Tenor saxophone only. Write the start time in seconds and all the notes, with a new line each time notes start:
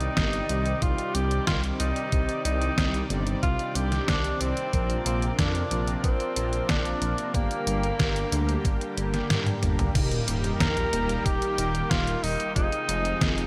Already playing: D#4
0.82 F4
1.14 G4
1.47 F4
1.80 D#4
2.45 D#4
3.43 F4
3.75 G4
4.08 D4
4.41 C4
5.06 C4
5.39 D4
6.04 C4
6.69 D4
7.34 A#3
10.60 A#4
11.25 G4
11.90 F4
12.23 D#4
12.56 D#4